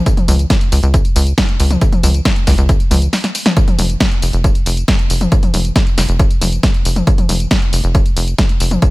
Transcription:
0.06 kick, closed hi-hat, tambourine
0.17 closed hi-hat, mid tom, tambourine
0.28 analog synth bass C#2, open hi-hat, mid tom, tambourine
0.39 closed hi-hat, tambourine
0.50 kick, snare, closed hi-hat, tambourine
0.61 closed hi-hat, tambourine
0.72 analog synth bass C#2, open hi-hat, tambourine
0.83 analog synth bass C#2, closed hi-hat, tambourine
0.94 kick, closed hi-hat, tambourine
1.05 closed hi-hat, tambourine
1.16 analog synth bass C#2, open hi-hat, tambourine
1.27 closed hi-hat, tambourine
1.38 kick, snare, closed hi-hat, tambourine
1.49 closed hi-hat, tambourine
1.60 analog synth bass C#2, open hi-hat, tambourine
1.71 closed hi-hat, mid tom, tambourine
1.81 kick, closed hi-hat, tambourine
1.92 closed hi-hat, mid tom, tambourine
2.03 analog synth bass C#2, open hi-hat, mid tom, tambourine
2.14 closed hi-hat, tambourine
2.25 kick, snare, closed hi-hat, tambourine
2.36 closed hi-hat, tambourine
2.47 analog synth bass C#2, kick, snare, open hi-hat, tambourine
2.58 analog synth bass C#2, closed hi-hat, tambourine
2.69 kick, closed hi-hat, tambourine
2.80 closed hi-hat, tambourine
2.91 analog synth bass C#2, open hi-hat, mid tom, tambourine
3.02 closed hi-hat, tambourine
3.13 snare, open hi-hat, tambourine
3.24 snare, closed hi-hat, tambourine
3.35 open hi-hat, tambourine
3.46 snare, closed hi-hat, mid tom, tambourine
3.57 kick, closed hi-hat, tambourine
3.68 closed hi-hat, mid tom, tambourine
3.79 analog synth bass F1, open hi-hat, mid tom, tambourine
3.90 closed hi-hat, tambourine
4.00 kick, snare, closed hi-hat, tambourine
4.11 closed hi-hat, tambourine
4.22 analog synth bass F1, open hi-hat, tambourine
4.33 analog synth bass F1, closed hi-hat, tambourine
4.44 kick, closed hi-hat, tambourine
4.55 closed hi-hat, tambourine
4.66 analog synth bass F1, open hi-hat, tambourine
4.77 closed hi-hat, tambourine
4.88 kick, snare, closed hi-hat, tambourine
4.99 closed hi-hat, tambourine
5.10 analog synth bass F1, open hi-hat, tambourine
5.21 closed hi-hat, mid tom, tambourine
5.32 kick, closed hi-hat, tambourine
5.43 closed hi-hat, mid tom, tambourine
5.54 analog synth bass F1, open hi-hat, mid tom, tambourine
5.65 closed hi-hat, tambourine
5.76 kick, snare, closed hi-hat, tambourine
5.87 closed hi-hat, tambourine
5.98 analog synth bass F1, snare, open hi-hat, tambourine
6.09 analog synth bass F1, closed hi-hat, tambourine
6.19 kick, closed hi-hat, tambourine
6.31 closed hi-hat, tambourine
6.41 analog synth bass F1, open hi-hat, mid tom, tambourine
6.52 closed hi-hat, tambourine
6.63 kick, snare, closed hi-hat, tambourine
6.74 closed hi-hat, tambourine
6.85 analog synth bass F1, open hi-hat, tambourine
6.96 closed hi-hat, mid tom, tambourine
7.07 kick, closed hi-hat, tambourine
7.18 closed hi-hat, mid tom, tambourine
7.29 analog synth bass F1, open hi-hat, mid tom, tambourine
7.40 closed hi-hat, tambourine
7.51 kick, snare, closed hi-hat, tambourine
7.62 closed hi-hat, tambourine
7.73 analog synth bass F1, open hi-hat, tambourine
7.84 analog synth bass F1, closed hi-hat, tambourine
7.95 kick, closed hi-hat, tambourine
8.06 closed hi-hat, tambourine
8.17 analog synth bass F1, open hi-hat, tambourine
8.28 closed hi-hat, tambourine
8.38 kick, snare, closed hi-hat, tambourine
8.49 closed hi-hat, tambourine
8.60 analog synth bass F1, open hi-hat, tambourine
8.71 closed hi-hat, mid tom, tambourine
8.82 kick, closed hi-hat, tambourine

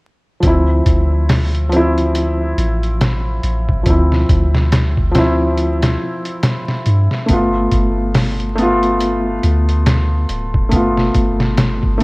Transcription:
0.40 808-style bass D2, felt piano F3 C4, kick, closed hi-hat
0.48 felt piano E4
0.86 808-style bass D2, kick, closed hi-hat
1.29 snare, open hi-hat
1.55 closed hi-hat
1.69 felt piano F3 C4, closed hi-hat
1.76 felt piano E4
1.98 closed hi-hat
2.15 closed hi-hat
2.58 808-style bass A1, closed hi-hat
2.83 closed hi-hat
3.01 snare, closed hi-hat
3.43 808-style bass A1, closed hi-hat
3.69 kick
3.83 808-style bass D2, felt piano F3 C4, kick, closed hi-hat
3.90 felt piano E4
4.12 snare
4.29 808-style bass D2, kick, closed hi-hat
4.54 snare
4.72 snare, closed hi-hat
4.97 kick
5.11 felt piano F3 C4, snare, closed hi-hat
5.18 felt piano E4
5.57 closed hi-hat
5.83 snare, closed hi-hat
6.25 closed hi-hat
6.43 snare, closed hi-hat
6.68 snare
6.86 808-style bass G2, closed hi-hat
7.11 snare
7.26 808-style bass G1, felt piano A3 B3, kick, closed hi-hat
7.33 felt piano F4
7.72 808-style bass G1, kick, closed hi-hat
8.14 snare, open hi-hat
8.40 closed hi-hat
8.55 felt piano A3 B3, closed hi-hat
8.62 felt piano F4
8.83 closed hi-hat
9.00 closed hi-hat
9.43 808-style bass D2, closed hi-hat
9.69 closed hi-hat
9.86 snare, closed hi-hat
10.29 808-style bass D1, closed hi-hat
10.54 kick
10.69 808-style bass G1, felt piano A3 B3, kick, closed hi-hat
10.76 felt piano F4
10.97 snare
11.15 808-style bass G1, kick, closed hi-hat
11.40 snare
11.58 snare, closed hi-hat
11.83 kick
11.98 felt piano A3

